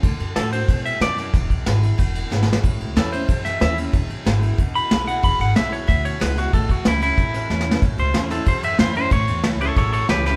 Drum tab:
RD |x--x--x--x--x--x--x--x--|x--x--x--x--x--x--------|x--x--x--x--x--x--x--x--|x--x--x--x--x--x--x--x--|
SD |------o-----------o--o--|------o-----------o-o-o-|------o--------o--o-----|------o-----------o-----|
BD |o-----------o-----------|o--o--------o-----------|o-----------o-----------|o-----------o-----------|

RD |x--x--x--x--x--x--x--x--|x--x--x--x--x--x--------|x--x--x--x--x--x--x--x--|x--x--x--x--x--x--x--x--|
SD |------o-----o-----o--o--|------o--------o--o-o-o-|------o--o--------o-----|------o-----------o--o--|
BD |o-----------o-----------|o--o--------o-----------|o-----------o-----------|o-----------o-----------|